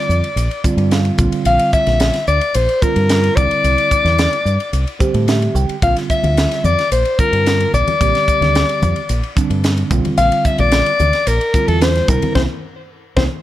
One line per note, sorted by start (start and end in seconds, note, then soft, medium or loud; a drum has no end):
0.00 0.27 D3 medium
0.00 0.27 G3 medium
0.00 0.27 C4 medium
0.00 0.27 F4 medium
0.00 0.66 D5 medium
0.09 0.20 F2 medium
0.09 hi-hat pedal medium
0.24 ride medium
0.36 0.47 A#1 medium
0.36 hi-hat pedal medium
0.36 ride medium
0.51 ride soft
0.64 1.16 D3 medium
0.64 1.17 G3 medium
0.64 1.17 C4 medium
0.64 1.18 F4 medium
0.64 0.90 D5 medium
0.64 muted fingered electric bass stroke soft
0.64 kick medium
0.64 hi-hat pedal medium
0.77 1.10 G2 medium
0.77 ride medium
0.91 1.42 F5 medium
0.91 snare loud
0.91 hi-hat pedal medium
0.91 ride medium
1.05 ride medium
1.17 1.30 A#1 medium
1.17 2.17 D3 medium
1.17 2.17 G3 medium
1.17 2.17 C4 medium
1.17 2.18 F4 medium
1.17 kick loud
1.17 hi-hat pedal medium
1.32 ride medium
1.45 1.57 A#1 medium
1.45 1.72 F5 loud
1.45 hi-hat pedal medium
1.45 ride medium
1.59 ride medium
1.72 2.24 E5 medium
1.72 muted fingered electric bass stroke soft
1.72 kick medium
1.72 hi-hat pedal medium
1.87 2.09 A#1 medium
1.87 snare soft
1.87 ride medium
2.00 snare loud
2.00 hi-hat pedal medium
2.00 ride medium
2.14 snare soft
2.14 ride medium
2.27 2.39 D2 medium
2.27 2.56 D5 medium
2.27 hi-hat pedal medium
2.41 ride medium
2.54 2.66 A#1 medium
2.54 2.84 C5 medium
2.54 hi-hat pedal medium
2.54 ride medium
2.69 ride medium
2.81 3.35 D3 medium
2.81 3.35 G3 medium
2.81 3.35 C4 medium
2.81 3.37 F4 medium
2.81 3.37 A#4 medium
2.81 muted fingered electric bass stroke soft
2.81 kick medium
2.81 hi-hat pedal medium
2.96 3.28 G2 medium
2.96 ride medium
3.09 snare loud
3.09 hi-hat pedal medium
3.09 ride medium
3.24 ride medium
3.36 3.48 C2 medium
3.36 4.35 D3 medium
3.36 4.35 G3 medium
3.36 4.36 C4 medium
3.36 4.36 E4 medium
3.36 5.00 D5 medium
3.36 kick loud
3.36 hi-hat pedal medium
3.51 ride medium
3.64 3.75 C2 medium
3.64 hi-hat pedal medium
3.64 ride medium
3.78 ride medium
3.91 muted fingered electric bass stroke soft
3.91 kick medium
3.91 hi-hat pedal medium
4.05 4.27 E2 medium
4.05 snare soft
4.05 ride medium
4.18 snare loud
4.18 hi-hat pedal medium
4.18 ride medium
4.33 ride medium
4.45 4.57 G2 medium
4.45 hi-hat pedal medium
4.60 ride soft
4.73 4.84 C2 medium
4.73 hi-hat pedal medium
4.73 ride medium
4.87 ride soft
4.99 5.74 D3 medium
4.99 5.74 G3 medium
4.99 5.75 C4 medium
4.99 5.75 G4 medium
4.99 5.26 C5 medium
4.99 muted fingered electric bass stroke soft
4.99 kick medium
4.99 hi-hat pedal medium
5.14 5.47 A2 medium
5.14 ride medium
5.28 5.54 E5 medium
5.28 snare loud
5.28 hi-hat pedal medium
5.28 ride medium
5.42 ride soft
5.55 5.66 C2 medium
5.55 5.81 G5 medium
5.55 hi-hat pedal medium
5.69 ride medium
5.82 5.93 A#1 medium
5.82 6.81 D3 medium
5.82 6.81 G3 medium
5.82 6.82 C4 medium
5.82 6.82 F4 medium
5.82 5.95 F5 loud
5.82 kick loud
5.82 hi-hat pedal medium
5.82 ride medium
5.96 snare soft
5.96 ride medium
6.10 6.66 E5 loud
6.10 muted fingered electric bass stroke soft
6.10 kick medium
6.10 hi-hat pedal medium
6.24 6.45 D2 medium
6.24 ride medium
6.24 high conga medium
6.37 snare loud
6.37 hi-hat pedal medium
6.37 ride medium
6.51 snare soft
6.51 ride medium
6.64 6.75 F2 medium
6.64 6.91 D5 medium
6.64 hi-hat pedal medium
6.64 high conga medium
6.79 snare soft
6.79 ride medium
6.92 7.03 A#1 medium
6.92 7.17 C5 medium
6.92 hi-hat pedal medium
6.92 ride medium
7.05 ride medium
7.18 7.93 D3 medium
7.18 7.93 G3 medium
7.18 7.93 C4 medium
7.18 7.94 F4 medium
7.18 7.70 A#4 medium
7.18 muted fingered electric bass stroke soft
7.18 kick medium
7.18 hi-hat pedal medium
7.32 7.65 G2 medium
7.32 ride medium
7.46 snare loud
7.46 hi-hat pedal medium
7.46 ride medium
7.60 ride medium
7.73 7.84 A#1 medium
7.73 9.33 D5 medium
7.73 hi-hat pedal medium
7.73 low conga medium
7.88 ride medium
7.88 high conga medium
8.00 8.12 A#1 medium
8.00 8.99 D3 medium
8.00 8.99 G3 medium
8.00 8.99 C4 medium
8.00 9.00 G4 medium
8.00 kick loud
8.00 hi-hat pedal medium
8.00 ride medium
8.15 snare soft
8.15 ride medium
8.28 muted fingered electric bass stroke soft
8.28 kick medium
8.28 hi-hat pedal medium
8.41 8.63 D2 medium
8.41 snare soft
8.41 ride medium
8.41 high conga medium
8.55 snare loud
8.55 hi-hat pedal medium
8.55 ride medium
8.69 ride medium
8.82 8.93 F2 medium
8.82 hi-hat pedal medium
8.82 high conga medium
8.82 low conga medium
8.96 ride medium
9.09 9.20 A#1 medium
9.09 hi-hat pedal medium
9.09 ride medium
9.23 ride soft
9.36 9.89 D3 medium
9.36 9.90 G3 medium
9.36 9.90 C4 medium
9.36 9.91 D4 loud
9.36 muted fingered electric bass stroke soft
9.36 kick medium
9.36 hi-hat pedal medium
9.50 9.82 G2 medium
9.50 ride medium
9.64 snare loud
9.64 hi-hat pedal medium
9.64 ride medium
9.77 ride medium
9.90 10.02 A#1 medium
9.90 10.89 D3 medium
9.90 10.90 G3 medium
9.90 10.90 C4 medium
9.90 10.90 F4 medium
9.90 kick loud
9.90 hi-hat pedal medium
9.90 low conga medium
10.05 ride medium
10.05 high conga medium
10.18 10.29 A#1 medium
10.18 10.47 F5 loud
10.18 hi-hat pedal medium
10.18 ride medium
10.32 ride medium
10.45 10.61 E5 loud
10.45 muted fingered electric bass stroke soft
10.45 kick medium
10.45 hi-hat pedal medium
10.58 10.81 A#1 medium
10.58 11.29 D5 loud
10.58 ride medium
10.58 high conga medium
10.72 snare loud
10.72 hi-hat pedal medium
10.72 ride medium
10.86 ride medium
10.99 11.11 D2 medium
10.99 hi-hat pedal medium
10.99 high conga medium
11.13 snare soft
11.13 ride medium
11.27 11.38 A#1 medium
11.27 11.69 A#4 medium
11.27 hi-hat pedal medium
11.27 ride medium
11.41 ride medium
11.53 12.06 D3 medium
11.53 12.07 G3 medium
11.53 12.07 C4 medium
11.53 12.09 F4 medium
11.53 muted fingered electric bass stroke soft
11.53 kick medium
11.53 hi-hat pedal medium
11.67 12.00 E2 medium
11.67 11.84 A4 medium
11.67 ride medium
11.81 12.10 C5 medium
11.81 snare loud
11.81 hi-hat pedal medium
11.81 ride medium
11.95 snare soft
11.95 ride medium
12.07 12.19 C2 medium
12.07 12.35 D3 medium
12.07 12.35 G3 medium
12.07 12.35 C4 medium
12.07 12.35 E4 medium
12.07 12.34 A#4 medium
12.07 kick loud
12.07 hi-hat pedal medium
12.07 low conga medium
12.22 muted fingered electric bass stroke soft
12.22 ride medium
12.22 high conga medium
12.35 12.46 C2 loud
12.35 12.45 A#3 medium
12.35 12.45 C4 medium
12.35 12.45 E4 medium
12.35 12.42 C5 medium
12.35 kick medium
12.35 snare medium
12.35 high conga loud
13.16 13.27 C2 medium
13.16 13.26 A#3 medium
13.16 13.26 C4 medium
13.16 13.26 E4 medium
13.16 13.23 C5 medium
13.16 kick medium
13.16 snare medium
13.16 high conga medium